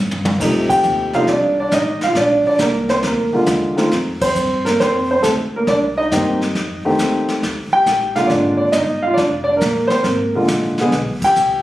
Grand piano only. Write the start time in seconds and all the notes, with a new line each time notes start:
0.40 C3 F3 A3 D#4
0.69 G4 G5
1.14 C3 F3 A3 D#4 F4 F5
1.29 D4 D5
1.60 D4 D5
1.73 D#4 D#5
2.04 F4 F5
2.17 D4 D5
2.47 D4 D5
2.60 A#3 A#4
2.90 C4 C5
3.06 A#3 A#4
3.33 D3 G#3 A#3 F4
3.76 D#3 A3 C4 F4
4.22 C4 C5
4.65 A#3 A#4
4.80 C4 C5
5.11 C4 C5
5.23 A3 A4
5.56 A#3 A#4
5.68 D4 D5
5.98 D#4 D#5
6.12 D#3 A#3 C4 G4
6.85 D#3 A3 C4 G4
7.73 G4 G5
8.16 D3 G#3 A#3 F4 F5
8.27 D4 D5
8.57 D4 D5
8.72 D#4 D#5
9.02 F5
9.07 F4
9.14 D5
9.18 D4
9.44 D5
9.49 D4
9.57 A#4
9.62 A#3
9.87 C4 C5
10.03 A#3 A#4
10.35 D3 G#3 A#3 F4
10.80 D3 G#3 B3 G#4
11.24 G4 G5